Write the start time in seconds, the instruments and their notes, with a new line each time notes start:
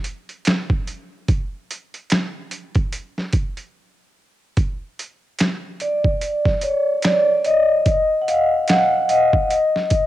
0.04 closed hi-hat
0.29 closed hi-hat
0.45 finger snap, snare, closed hi-hat
0.70 kick
0.87 closed hi-hat
1.28 kick, closed hi-hat
1.71 closed hi-hat
1.94 closed hi-hat
2.10 finger snap, snare, closed hi-hat
2.51 closed hi-hat
2.75 kick, closed hi-hat
2.93 closed hi-hat
3.18 snare
3.33 kick, closed hi-hat
3.57 closed hi-hat
4.57 kick, closed hi-hat
4.99 closed hi-hat
5.39 finger snap, snare, closed hi-hat
5.80 vibraphone D5, closed hi-hat
6.04 kick
6.21 closed hi-hat
6.45 kick, snare
6.61 vibraphone C#5, closed hi-hat
7.02 vibraphone D5, finger snap, snare, closed hi-hat
7.45 vibraphone D#5, closed hi-hat
7.86 kick, closed hi-hat
8.22 vibraphone F#5
8.28 vibraphone F5, closed hi-hat
8.68 vibraphone F#5, finger snap, snare, closed hi-hat
9.09 vibraphone D#5, closed hi-hat
9.33 kick
9.50 closed hi-hat
9.76 snare
9.90 kick, closed hi-hat